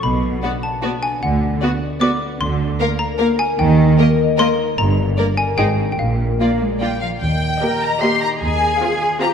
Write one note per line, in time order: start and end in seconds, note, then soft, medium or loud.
0.03 0.36 B1 medium
0.03 0.36 B2 medium
0.03 1.24 B2 soft
0.03 0.59 B5 medium
0.24 2.43 F#3 soft
0.43 0.51 B3 soft
0.43 1.02 D4 soft
0.43 0.51 F#4 soft
0.43 0.51 D5 soft
0.63 2.01 B4 soft
0.63 1.00 A5 medium
0.82 0.92 B3 soft
0.82 0.90 F#4 soft
0.82 1.62 F#4 soft
0.82 0.91 D5 soft
1.03 2.60 D4 soft
1.03 1.21 G#5 medium
1.22 1.56 D2 medium
1.22 1.56 D3 medium
1.22 2.40 D3 soft
1.22 1.78 F#5 medium
1.43 2.43 B3 soft
1.62 1.70 B3 soft
1.62 1.70 F#4 soft
1.62 2.20 F#4 soft
1.62 1.70 D5 soft
1.82 3.61 D5 soft
2.01 2.09 B3 soft
2.01 2.10 F#4 soft
2.01 2.43 B4 soft
2.01 2.09 D5 soft
2.01 2.38 D6 medium
2.21 2.42 F#4 soft
2.41 2.73 D2 medium
2.41 2.73 D3 medium
2.41 3.61 D3 soft
2.41 2.96 C6 medium
2.61 3.61 D4 soft
2.80 2.88 A#3 soft
2.80 3.19 F4 medium
2.80 2.88 A#4 medium
2.80 2.88 F5 medium
2.99 3.98 A#4 soft
2.99 3.36 A#5 medium
3.19 3.28 A#3 medium
3.19 3.61 F4 soft
3.19 3.27 A#4 medium
3.19 3.28 F5 soft
3.39 3.78 A#3 soft
3.39 3.58 G#5 medium
3.59 3.92 D#2 medium
3.59 3.92 D#3 medium
3.59 4.79 D#3 medium
3.59 4.14 G5 medium
3.79 5.59 A#3 soft
3.99 4.08 A#3 soft
3.99 4.07 A#4 soft
3.99 4.37 A#4 medium
3.99 4.08 D#5 medium
4.18 4.79 D#5 soft
4.38 4.47 A#3 medium
4.38 4.46 A#4 medium
4.38 5.36 A#4 medium
4.38 4.47 D#5 medium
4.38 4.75 C6 loud
4.58 4.79 D#4 soft
4.77 5.10 G1 medium
4.77 5.59 G2 medium
4.77 5.10 G2 medium
4.77 5.33 A#5 medium
4.97 5.59 D3 soft
5.18 5.26 A#3 soft
5.18 5.59 D4 medium
5.18 5.26 A#4 soft
5.18 5.26 D5 medium
5.37 5.59 A#4 soft
5.37 5.56 G#5 medium
5.57 5.91 G#1 medium
5.57 5.91 G#2 medium
5.57 6.00 G#2 soft
5.57 5.66 D#4 soft
5.57 5.65 G#4 soft
5.57 5.66 C5 soft
5.57 5.89 G5 medium
5.78 6.00 C4 soft
5.78 6.00 C5 soft
5.92 5.99 G5 soft
5.98 6.33 A#1 medium
5.98 6.33 A#2 medium
5.98 7.24 A#2 soft
5.98 6.78 F5 soft
6.20 8.44 A#3 soft
6.40 6.59 A#3 medium
6.40 6.49 A#3 soft
6.40 6.48 F4 soft
6.40 6.80 F4 soft
6.40 6.49 D5 soft
6.60 6.81 G#3 soft
6.60 7.24 D5 soft
6.80 7.02 G3 medium
6.80 6.89 A#3 soft
6.80 6.89 F4 soft
6.80 7.24 F4 soft
6.80 6.88 D5 soft
6.80 7.00 G5 medium
7.01 7.10 F3 soft
7.01 7.24 F3 soft
7.01 7.09 F5 soft
7.20 7.54 D#2 medium
7.20 8.41 D#3 soft
7.20 7.80 G5 medium
7.43 8.21 D#4 soft
7.62 7.92 A#3 soft
7.62 7.92 G4 soft
7.62 8.01 G4 soft
7.62 7.92 A#4 soft
7.62 7.99 A#4 medium
7.62 7.92 D#5 soft
7.82 9.34 D#5 soft
7.82 8.02 A#5 medium
8.02 8.32 A#3 soft
8.02 8.41 G4 soft
8.02 8.32 G4 soft
8.02 8.32 A#4 soft
8.02 8.32 D#5 soft
8.02 8.22 C6 medium
8.21 9.34 D#4 soft
8.21 8.29 A#5 medium
8.41 8.73 D#2 medium
8.41 9.34 D#3 soft
8.41 9.20 G#4 medium
8.41 9.00 G#5 medium
8.62 9.34 C4 soft
8.81 9.11 C4 soft
8.81 9.12 F4 soft
8.81 9.20 G#4 soft
8.81 9.12 G#4 soft
8.81 9.12 F5 soft
9.01 9.34 C5 soft
9.22 9.34 C4 soft
9.22 9.34 F4 soft
9.22 9.34 G4 soft
9.22 9.34 G#4 soft
9.22 9.34 F5 soft
9.22 9.30 A#5 medium